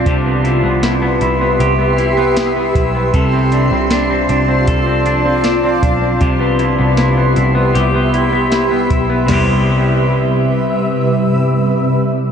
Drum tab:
CC |--------|--------|--------|x-------|
HH |xxxxxxxx|xxxxxxxx|xxxxxxxx|--------|
SD |--o---o-|--o---o-|--o---o-|o-------|
FT |--------|--------|--------|o-------|
BD |o------o|o---o--o|o------o|--------|